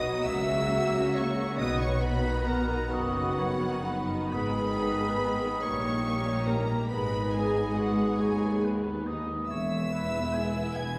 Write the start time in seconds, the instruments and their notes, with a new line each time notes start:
Already playing: viola section F#3 B3, french horn section B3 F#4, violin section F#4 D#6, flute section D#5, clarinet D#5
0.04 violin section D#4
0.25 double bass section C#2, cello section C#3, viola section A#3, french horn section A#3, violin section A#3 E6, clarinet E5, flute section E5, oboe E5
0.50 violin section C#4
0.71 violin section A#3
0.93 violin section C#4
1.14 violin section A#3 C#6, clarinet C#5, flute section C#5
1.38 violin section C#4
1.56 double bass section B1, cello section B2, viola section D#3 B3, french horn section B3 D#4, violin section B3 D#6, clarinet D#5, flute section D#5
1.61 oboe F#5
1.81 violin section D#4 C#6, clarinet C#5, flute section C#5
2.02 violin section B3 B5, clarinet B4, flute section B4
2.22 violin section D#4
2.44 violin section B3 A#5, clarinet A#4
2.49 flute section A#4
2.69 violin section D#4
2.89 double bass section F#1, cello section F#2, violin section B3 F#5, clarinet F#4, flute section F#4, oboe D#5
3.13 violin section D#4
3.39 violin section B3, oboe C#5
3.63 violin section D#4
3.84 oboe B4
3.88 violin section B3
4.11 violin section D#4
4.32 double bass section G#1, cello section G#2, french horn section G#3, violin section G#3 G#4 B5, clarinet B4, flute section B4, oboe D#5
4.59 violin section B3
4.79 violin section D#4
5.02 violin section B3
5.25 violin section G#3
5.46 violin section B3
5.61 double bass section A#1, cello section A#2, french horn section G3, viola section A#3, clarinet C#5, flute section C#5, violin section C#6
5.67 violin section G3 G4
5.86 violin section A#3
6.07 violin section C#4
6.27 violin section D#4
6.46 violin section C#4 A#5, clarinet A#4, flute section A#4
6.68 violin section A#3
6.89 double bass section G#1, cello section G#2, french horn section G#3 D#4, viola section G#3 B3, violin section G#3 G#4 B5, clarinet B4, flute section B4, oboe D#5
7.13 violin section B3
7.33 violin section D#4 G#5, clarinet G#4
7.38 flute section G#4
7.55 violin section B3
7.76 violin section G#3 F#5, clarinet F#4
7.81 flute section F#4
7.98 violin section B3
8.19 cello section D#2, double bass section D#2, violin section D#4 G#5, clarinet G#4, flute section G#4, oboe C#5
8.41 violin section B3
8.63 violin section G#3, oboe B4
8.83 violin section B3
9.06 violin section D#4, oboe D#5
9.26 violin section B3
9.47 double bass section E1, cello section E2, oboe C#5, clarinet E5, flute section E5, violin section E6
9.90 viola section G#3 B3, violin section E4 B4, oboe B4
10.33 french horn section G#3 E4, oboe G#5
10.74 double bass section E1, cello section E2, clarinet G#5, flute section G#5, violin section G#6